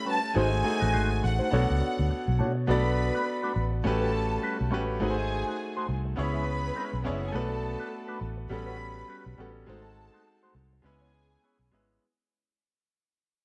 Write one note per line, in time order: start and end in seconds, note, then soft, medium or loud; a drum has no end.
0.00 0.13 A3 medium
0.00 0.14 C#4 medium
0.00 0.14 E4 medium
0.00 0.14 G4 medium
0.00 0.15 B4 medium
0.05 0.18 G3 medium
0.05 0.18 C#4 medium
0.05 0.19 F#4 medium
0.05 0.19 B4 medium
0.11 0.36 A5 medium
0.22 muted clean electric guitar stroke soft
0.34 0.62 G#1 loud
0.34 0.50 A3 medium
0.34 0.58 A3 medium
0.34 0.50 D#4 medium
0.34 0.58 D#4 medium
0.34 0.51 F#4 medium
0.34 0.59 F#4 medium
0.34 0.59 G#4 medium
0.34 0.50 C5 medium
0.34 0.59 C5 medium
0.34 1.20 G#5 medium
0.52 muted clean electric guitar stroke soft
0.64 1.50 A3 medium
0.64 1.50 D#4 medium
0.64 1.50 F#4 medium
0.64 1.51 G#4 medium
0.64 1.51 C5 medium
0.64 muted clean electric guitar stroke soft
0.80 0.93 A1 medium
0.80 0.91 A3 soft
0.80 0.90 D#4 soft
0.80 0.90 F#4 soft
0.80 0.89 D#5 medium
0.92 1.20 G#1 medium
0.92 1.08 A3 medium
0.92 1.08 D#4 medium
0.92 1.09 F#4 medium
0.92 1.09 C5 medium
1.22 1.39 A1 medium
1.22 2.37 F#5 medium
1.22 muted clean electric guitar stroke soft
1.39 1.49 A3 soft
1.39 1.49 D#4 soft
1.39 1.48 F#4 soft
1.39 1.48 C5 medium
1.51 1.68 B1 loud
1.51 1.79 A3 medium
1.51 2.46 B3 medium
1.51 2.46 D4 medium
1.51 1.80 D4 medium
1.51 2.46 F#4 medium
1.51 1.80 F#4 medium
1.51 2.47 A4 medium
1.51 1.80 C#5 medium
1.51 2.47 C#5 medium
1.70 1.81 C#2 medium
1.81 muted clean electric guitar stroke soft
1.97 2.10 D2 medium
1.97 muted clean electric guitar stroke soft
2.10 muted clean electric guitar stroke soft
2.10 muted fingered electric bass stroke soft
2.28 2.41 B1 medium
2.39 2.66 B2 loud
2.39 2.51 A3 medium
2.39 2.51 D4 soft
2.39 2.52 F#4 soft
2.39 2.52 C#5 medium
2.57 muted clean electric guitar stroke soft
2.67 3.09 B1 medium
2.67 2.83 A3 medium
2.67 3.53 B3 medium
2.67 2.83 D4 medium
2.67 3.54 D4 medium
2.67 2.83 F#4 medium
2.67 3.54 F#4 medium
2.67 3.54 A4 medium
2.67 2.84 B4 medium
2.67 3.55 B4 medium
2.67 3.55 D5 loud
2.67 3.55 B5 loud
2.96 muted clean electric guitar stroke soft
3.14 3.24 A3 soft
3.14 3.23 D4 soft
3.14 3.23 F#4 soft
3.14 3.23 B4 soft
3.28 muted clean electric guitar stroke soft
3.42 3.53 A3 medium
3.42 3.54 D4 medium
3.42 3.54 F#4 medium
3.42 3.54 B4 medium
3.54 3.82 A1 medium
3.54 muted clean electric guitar stroke soft
3.71 muted clean electric guitar stroke soft
3.84 4.37 A1 medium
3.84 4.49 A3 medium
3.84 4.49 C#4 medium
3.84 4.49 F#4 medium
3.84 4.50 G4 medium
3.84 4.70 A4 medium
3.84 4.50 B4 medium
3.84 4.70 A5 loud
3.84 muted clean electric guitar stroke soft
4.01 4.12 G3 medium
4.01 4.12 C#4 medium
4.01 4.13 F#4 medium
4.01 4.12 B4 medium
4.13 muted clean electric guitar stroke soft
4.31 muted clean electric guitar stroke soft
4.42 4.57 G3 medium
4.42 4.58 C#4 medium
4.42 4.58 F#4 medium
4.42 4.58 B4 medium
4.61 4.72 B1 medium
4.71 4.98 A1 medium
4.71 4.83 G3 medium
4.71 4.94 A3 medium
4.71 4.95 C#4 medium
4.71 4.84 C#4 medium
4.71 4.95 F#4 medium
4.71 4.84 F#4 medium
4.71 4.95 G4 medium
4.71 4.84 B4 medium
4.71 4.96 B4 medium
4.88 muted clean electric guitar stroke soft
5.00 5.42 G#1 medium
5.00 5.86 A3 medium
5.00 5.16 A3 medium
5.00 5.16 D#4 medium
5.00 5.86 D#4 medium
5.00 5.16 F#4 medium
5.00 5.87 F#4 medium
5.00 5.87 G#4 medium
5.00 5.10 B4 medium
5.00 5.17 C5 medium
5.00 5.87 G#5 loud
5.10 5.91 C5 loud
5.30 muted clean electric guitar stroke soft
5.47 5.57 A3 soft
5.47 5.56 D#4 soft
5.47 5.56 F#4 soft
5.47 5.56 C5 medium
5.60 muted clean electric guitar stroke soft
5.77 5.87 A3 medium
5.77 5.87 D#4 medium
5.77 5.88 F#4 medium
5.77 5.87 C5 medium
5.89 6.14 C2 medium
6.05 muted clean electric guitar stroke soft
6.16 6.70 C#2 loud
6.16 6.81 B3 medium
6.16 6.82 C#4 medium
6.16 6.82 E4 medium
6.16 6.82 G#4 medium
6.16 6.99 B4 loud
6.16 6.83 C#5 medium
6.16 6.99 B5 loud
6.16 muted clean electric guitar stroke soft
6.33 6.46 G#3 medium
6.33 6.46 C#4 medium
6.33 6.45 E4 medium
6.33 6.45 B4 medium
6.63 muted clean electric guitar stroke soft
6.75 6.97 G#3 medium
6.75 6.93 C#4 medium
6.75 6.92 E4 medium
6.75 6.92 B4 medium
6.93 7.07 B1 medium
6.93 muted clean electric guitar stroke soft
7.04 7.31 F#1 medium
7.04 7.17 G#3 medium
7.04 7.27 B3 medium
7.04 7.27 C#4 medium
7.04 7.17 C#4 medium
7.04 7.13 D4 medium
7.04 7.28 E4 medium
7.04 7.17 E4 soft
7.04 7.28 G#4 medium
7.04 7.17 B4 medium
7.04 7.28 C#5 medium
7.04 7.13 D5 medium
7.12 7.21 E4 medium
7.12 7.22 E5 medium
7.20 7.27 F#4 medium
7.20 7.27 F#5 medium
7.20 muted clean electric guitar stroke soft
7.25 7.33 G#4 medium
7.25 7.33 G#5 medium
7.31 7.75 B1 loud
7.31 8.18 A3 medium
7.31 7.49 A3 medium
7.31 8.19 B3 medium
7.31 8.19 D4 medium
7.31 7.49 D4 medium
7.31 8.20 F#4 medium
7.31 8.18 A4 medium
7.31 8.18 A5 loud
7.35 7.50 F#4 medium
7.35 8.20 B4 medium
7.35 7.50 B4 medium
7.62 muted clean electric guitar stroke soft
7.79 7.89 A3 soft
7.79 7.89 D4 medium
7.79 7.88 F#4 medium
7.79 7.88 B4 medium
7.90 muted clean electric guitar stroke soft
8.08 8.20 A3 medium
8.08 8.20 D4 medium
8.08 8.20 F#4 medium
8.08 8.19 B4 medium
8.21 8.47 A1 medium
8.37 muted clean electric guitar stroke soft
8.49 9.02 A1 medium
8.49 9.15 G3 medium
8.49 9.15 B3 medium
8.49 9.15 C#4 medium
8.49 9.16 F#4 medium
8.49 9.16 A4 medium
8.49 9.36 B4 medium
8.49 9.36 B5 loud
8.49 muted clean electric guitar stroke soft
8.67 8.78 G3 medium
8.67 8.79 C#4 medium
8.67 8.78 F#4 medium
8.67 8.78 B4 medium
8.79 muted clean electric guitar stroke soft
8.97 muted clean electric guitar stroke soft
9.08 9.23 G3 medium
9.08 9.24 C#4 medium
9.08 9.24 F#4 medium
9.08 9.24 B4 medium
9.26 9.37 B1 medium
9.38 9.64 A1 medium
9.38 9.60 G3 medium
9.38 9.50 G3 soft
9.38 9.61 B3 medium
9.38 9.61 C#4 medium
9.38 9.50 C#4 soft
9.38 9.61 F#4 medium
9.38 9.51 F#4 medium
9.38 9.62 A4 medium
9.38 9.51 B4 medium
9.55 muted clean electric guitar stroke soft
9.67 10.08 G#1 loud
9.67 10.52 G#3 medium
9.67 9.82 A3 medium
9.67 10.52 C4 medium
9.67 9.83 D#4 medium
9.67 10.53 D#4 medium
9.67 9.83 F#4 medium
9.67 10.53 F#4 medium
9.67 10.53 A4 medium
9.67 9.83 C5 medium
9.67 10.53 A5 medium
9.97 muted clean electric guitar stroke soft
10.13 10.23 A3 medium
10.13 10.22 D#4 medium
10.13 10.22 F#4 medium
10.13 10.22 C5 medium
10.27 muted clean electric guitar stroke soft
10.43 10.54 A3 medium
10.43 10.54 D#4 medium
10.43 10.54 F#4 medium
10.43 10.53 C5 medium
10.55 10.80 C2 medium
10.55 muted clean electric guitar stroke soft
10.73 muted clean electric guitar stroke soft
10.82 11.36 C#2 medium
10.82 11.47 G#3 medium
10.82 11.48 B3 medium
10.82 11.48 C#4 medium
10.82 11.49 E4 medium
10.82 11.69 G#4 medium
10.82 11.49 B4 medium
10.82 11.69 G#5 loud
10.82 muted clean electric guitar stroke soft
11.01 11.13 B3 medium
11.01 11.12 E4 medium
11.01 11.12 G#4 medium
11.01 11.12 C#5 medium
11.31 muted clean electric guitar stroke soft
11.43 11.57 B3 medium
11.43 11.58 E4 medium
11.43 11.58 G#4 medium
11.43 11.58 C#5 medium
11.59 11.70 B1 medium
11.71 11.97 G#1 medium
11.71 11.94 G#3 medium
11.71 11.94 B3 medium
11.71 11.83 B3 medium
11.71 11.95 C#4 medium
11.71 11.84 E4 soft
11.71 11.95 E4 medium
11.71 11.84 G#4 soft
11.71 11.95 B4 medium
11.71 11.84 C#5 medium
11.89 muted clean electric guitar stroke soft